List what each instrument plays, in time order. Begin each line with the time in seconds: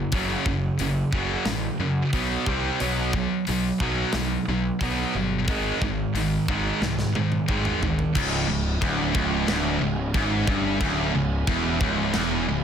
Already playing: distorted electric guitar F#2 C#3
0.12 picked electric bass F#1, distorted electric guitar F#2 C#3 F#3, kick, open hi-hat
0.45 picked electric bass F#1, distorted electric guitar F#2 C#3, kick
0.79 picked electric bass F#1, distorted electric guitar F#2 C#3, open hi-hat
1.12 picked electric bass F#1, distorted electric guitar F#2 C#3 F#3, kick
1.45 picked electric bass A1, distorted electric guitar F#2 C#3, snare, open hi-hat
1.79 picked electric bass F#2, distorted electric guitar F#2 C#3
2.13 picked electric bass B1, distorted electric guitar B2 F#3 B3, kick, open hi-hat
2.46 picked electric bass C2, distorted electric guitar C3 G3 C4, kick
2.80 picked electric bass B1, distorted electric guitar B2 F#3 B3, open hi-hat
3.13 distorted electric guitar B2 F#3, kick
3.47 picked electric bass B1, distorted electric guitar B2 F#3, open hi-hat
3.80 picked electric bass B1, distorted electric guitar B2 F#3 B3, kick
4.13 picked electric bass B1, distorted electric guitar B2 F#3, snare, open hi-hat
4.48 picked electric bass B1, distorted electric guitar B2 F#3
4.81 picked electric bass B1, distorted electric guitar B2 F#3 B3, kick, open hi-hat
5.14 picked electric bass G1, distorted electric guitar B2 F#3
5.48 picked electric bass G#1, distorted electric guitar G#2 D#3 G#3, kick, open hi-hat
5.81 picked electric bass G#1, distorted electric guitar G#2 D#3, kick
6.14 picked electric bass G#1, distorted electric guitar G#2 D#3, open hi-hat
6.48 picked electric bass G#1, distorted electric guitar G#2 D#3 G#3, kick
6.81 picked electric bass C2, distorted electric guitar G#2 D#3, snare
6.99 snare
7.15 picked electric bass G#2, distorted electric guitar G#2 D#3, high tom
7.32 high tom
7.48 picked electric bass G#1, distorted electric guitar G#2 D#3 G#3, kick, mid tom
7.65 mid tom
7.81 picked electric bass G#1, distorted electric guitar G#2 D#3, floor tom
7.99 floor tom
8.15 picked electric bass C#1, distorted electric guitar C#2, string section C#3 C#4 E4 G#4, kick, crash
8.48 picked electric bass C#1, distorted electric guitar C#2
8.82 picked electric bass D1, distorted electric guitar D2, kick, crash
9.13 picked electric bass C#1, distorted electric guitar C#2, kick
9.46 picked electric bass D1, distorted electric guitar D2, snare, crash
9.51 distorted electric guitar D2
9.81 picked electric bass C#1, distorted electric guitar C#2
10.14 picked electric bass G#1, distorted electric guitar G#2, kick, crash
10.47 picked electric bass G1, distorted electric guitar G2, kick
10.80 picked electric bass D1, distorted electric guitar D2, kick, crash
11.14 picked electric bass C#1, distorted electric guitar C#2
11.47 picked electric bass E1, distorted electric guitar E2, kick, crash
11.81 picked electric bass C#1, distorted electric guitar C#2, kick
12.14 picked electric bass E1, distorted electric guitar E2, snare, crash
12.48 picked electric bass C#1, distorted electric guitar C#2